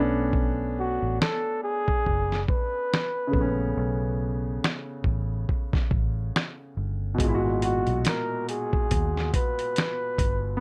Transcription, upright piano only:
Already playing: A3 B3 C#4 B4
0.00 D4
3.27 C#3
3.32 A3
3.36 B3
3.41 C#4
7.14 B2
7.19 G#3
7.24 A#2
7.28 E4
7.35 F#4
10.57 B3

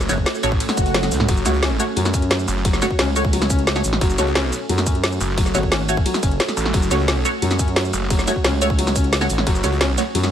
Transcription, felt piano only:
1.29 F#3
1.46 F#4
1.63 C#4
1.97 F#3
2.14 C#4
2.65 F#3
2.82 F#4
2.99 C#4
3.33 F#3
3.50 C#4
4.01 F#3
4.18 F#4
4.35 C#4
4.69 F#3
4.86 C#4
5.38 F#3
5.55 F#4
5.72 C#4
6.06 F#3
6.23 C#4
6.74 F#3
6.91 F#4
7.08 C#4
7.42 F#3
7.59 C#4
8.10 F#3
8.28 F#4
8.45 C#4
8.79 F#3
8.96 C#4
9.47 F#3
9.64 F#4
9.81 C#4
10.15 F#3

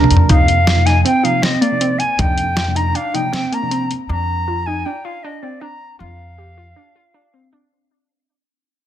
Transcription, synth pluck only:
Already playing: D4
0.30 D#4
0.67 F4
0.86 D#4
1.05 C4
1.23 D#4
1.42 C4
1.61 A#3
1.81 C4
2.19 D#4
2.56 F4
2.75 D#4
2.95 D4
3.14 D#4
3.33 C4
3.52 A#3
3.71 C4
4.09 D4
4.48 F4
4.67 D#4
4.86 D4
5.05 F4
5.24 D4
5.43 C4
5.61 D4
5.99 F4
6.38 G4
6.58 F4
6.76 D4
6.95 F4
7.14 D4
7.34 C4
7.53 D4

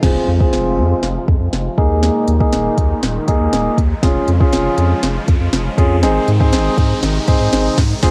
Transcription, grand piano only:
0.03 C4 F4 G#4
0.40 C4 F4 G#4
1.78 A#3 D#4 G#4
2.40 A#3 D#4 G#4
3.28 A#3 D#4 G#4
4.03 C#4 F4 G#4
4.40 C#4 F4 G#4
5.78 C#4 F4 G#4
6.03 C4 D#4 G#4
6.40 C4 D#4 G#4
7.28 C4 D#4 G#4
8.03 C4 F4 G#4

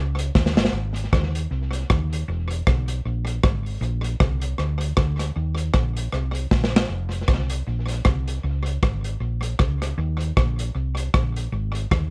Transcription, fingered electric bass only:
Already playing: C#2
0.35 D#2
0.56 G1
0.73 G#1
1.13 D#2
1.51 C2
1.90 D#2
2.28 E1
2.67 B1
3.05 A#1
3.44 G#1
3.81 A#1
4.20 C2
4.59 D2
4.97 D2
5.36 D#2
5.74 A#1
6.13 C2
6.51 A#1
6.89 F1
7.28 C2
7.67 A#1
8.06 C2
8.44 C#2
8.83 G#1
9.20 A#1
9.60 C#2
9.98 D#2
10.37 A#1
10.75 C2
11.14 A#1
11.52 G#1
11.91 D#2

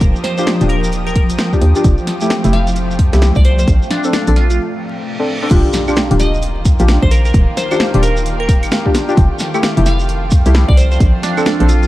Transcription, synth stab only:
0.38 D4 F4 G4
0.61 D4 F4 G4
1.53 D4 F4 G4
1.76 D4 F4 G4
2.21 A3 E4 G4
2.44 A3 E4 G4
3.13 A3 E4 G4
4.05 C4 D4 A4
4.28 C4 D4 A4
5.19 C4 D4 A4
5.42 C4 D4 A4
5.51 D4 F4 G4
5.88 D4 F4 G4
6.11 D4 F4 G4
6.80 D4 F4 G4
7.71 D4 F4 G4
7.94 D4 F4 G4
8.86 D4 F4 G4
9.09 D4 F4 G4
9.54 A3 E4 G4
9.77 A3 E4 G4
10.46 A3 E4 G4
11.37 C4 D4 A4
11.60 C4 D4 A4

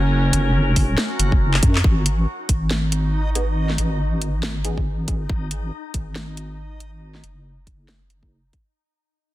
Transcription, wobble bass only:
Already playing: F#1
0.33 F#1
0.78 F1
1.19 F#1
1.63 F#2
1.84 G#1
2.49 G#1
3.78 G#1
5.08 G#1
5.29 G#1
5.94 G#1
7.24 F#1

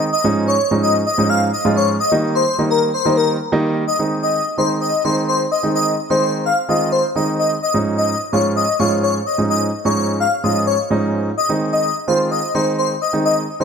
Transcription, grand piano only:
0.24 G#2 F3 G#3 C#4 D#4
0.71 G#2 F3 G#3 C#4 D#4
1.18 G#2 F3 G#3 C#4 D#4
1.65 G#2 F3 G#3 C#4 F4
2.12 D#3 G3 A#3 D#4
2.58 D#3 G3 A#3 D#4
3.05 D#3 G3 A#3 D#4
3.52 D#3 G3 A#3 D#4
3.99 D#3 G#3 C4 D#4
4.58 D#3 G#3 C4 D#4
5.04 D#3 G#3 C4 D#4
5.63 D#3 G#3 C4 D#4
6.10 D#3 G#3 C4 D#4
6.69 D#3 G#3 C4 F4
7.15 D#3 G#3 C4 D#4
7.74 G#2 F3 G#3 C#4 D#4
8.33 G#2 F3 G#3 C#4 F4
8.79 G#2 F3 G#3 C#4 F4
9.38 G#2 F3 G#3 C#4 D#4
9.85 G#2 F3 G#3 C#4 D#4
10.44 G#2 F3 G#3 C#4 F4
10.90 G#2 F3 G#3 C#4 D#4
11.49 D#3 G#3 C4 D#4
12.08 D#3 G#3 C4 F4
12.54 D#3 G#3 C4 D#4
13.13 D#3 G#3 C4 D#4
13.60 D#3 G#3 C4 D#4

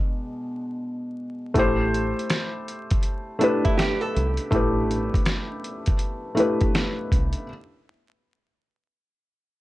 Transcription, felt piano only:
Already playing: B2 G#3 D4
1.54 A3 E4 G4
1.59 C5
3.39 A3 E4 G4
3.44 B4
4.51 A3 E4 G4
4.56 B4
6.35 A3 E4 G4
6.40 B4

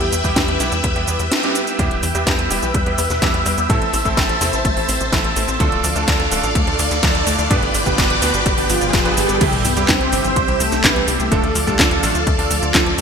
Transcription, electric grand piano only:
Already playing: G3 B3 E4 G4
0.24 G3 B3 E4 G4
0.60 G3 B3 E4 G4
0.96 G3 B3 E4 G4
1.08 G3 B3 E4 G4
1.43 G3 B3 E4 G4
1.79 G3 B3 E4 G4
2.15 G3 B3 E4 G4
2.51 G3 B3 E4 G4
2.86 G3 B3 E4 G4
3.22 G3 B3 E4 G4
3.70 A3 C4 E4 A4
4.05 A3 C4 E4 A4
4.41 A3 C4 E4 A4
4.77 A3 C4 E4 A4
5.13 A3 C4 E4 A4
5.60 A3 D4 F4 A4
5.96 A3 D4 F4 A4
6.32 A3 D4 F4 A4
6.67 A3 D4 F4 A4
7.03 A3 D4 F4 A4
7.51 B3 D4 G4 B4
7.86 B3 D4 G4 B4
8.22 B3 D4 G4 B4
8.58 B3 D4 G4 B4
8.70 B3 D4 G4 B4
9.05 B3 D4 G4 B4
9.41 G3 C4 E4 G4
9.77 G3 C4 E4 G4
10.12 G3 C4 E4 G4
10.48 G3 C4 E4 G4
10.84 G3 E4 G4
11.31 A3 D4 F4 A4
11.67 A3 D4 F4 A4
12.03 A3 D4 F4 A4
12.39 A3 D4 F4 A4
12.74 A3 D4 F4 A4

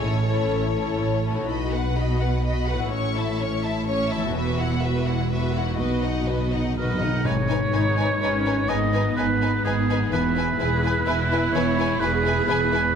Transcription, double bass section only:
0.01 A1
0.49 A1
0.98 A1
1.47 B1
2.91 A1
4.35 E1
5.78 B1
7.25 G#1
7.73 G#1
8.20 G#1
8.68 G#1
9.15 G#1
9.63 G#1
10.10 E1
10.59 E1
11.05 E1
11.53 E1
12.00 E1
12.47 E1

